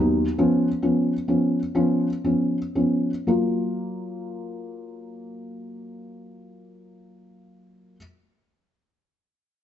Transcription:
Already playing: D#2 F#3 B3 D#4
0.38 F3 B3 C#4
0.82 F3 B3 C#4
1.28 F3 B3 C#4
1.75 F3 B3 C#4
2.24 F3 B3 C#4
2.75 F3 B3 C#4
3.27 F#3 A#3 F4

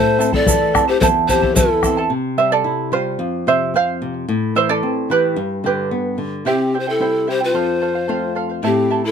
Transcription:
Already playing: A2 E4 A4 C5 E5 A5
0.19 C4 E4 A4 E5 A5, shaker
0.33 E4 A4 D5 A5, bombo low
0.46 E3 E4 A4 E5 A5, bombo low, shaker
0.74 C4 E4 A4 E5 A5, bombo rim, bombo low, shaker
0.88 E4 G4 A4 C5 A5
1.00 E2 E4 A4 C5 E5 A5, bombo low, shaker
1.28 C4 E4 G4 A4 C5 E5 A5, bombo low, shaker
1.42 E4 A4 A5, bombo low
1.55 E3 E4 A4 E5 A5, bombo low, shaker
1.83 C4 E4 A4 E5 A5, bombo rim, bombo low, shaker
1.97 E4 A4 A5
2.10 C3
2.38 G3 C5 E5
2.52 A4 D5
2.64 E4
2.92 G3 F4 C5
3.19 F2
3.47 C3 C5 E5
3.74 C4 C5 F5
4.02 C3
4.28 A2
4.56 E3 C5 E5
4.69 A4 D5
4.83 C4
5.10 E3 G4 B4
5.36 G2
5.64 D3 G4 B4
5.91 B3
6.18 D3
6.45 C3 C4 E4 G4 C5 E5 G5
6.74 E4 C5 E5 G5
6.79 G4 C5
6.87 E4 A4 C5 G5
6.99 G3 C4 E4 C5 E5 G5
7.27 E4 G4 C5 E5 G5
7.40 E4 F4 C5 G5
7.54 F2 A4 C5 F5
7.81 A4 C5 F5
7.95 C5 F5
8.08 A3 C4 F4 A4 C5 F5
8.35 A4 C5 F5
8.49 C5 F5
8.63 A2 C4 E4 G4 A4 C5 E5 A5
8.90 E4 A4 E5 A5
9.04 E4 A4 A5

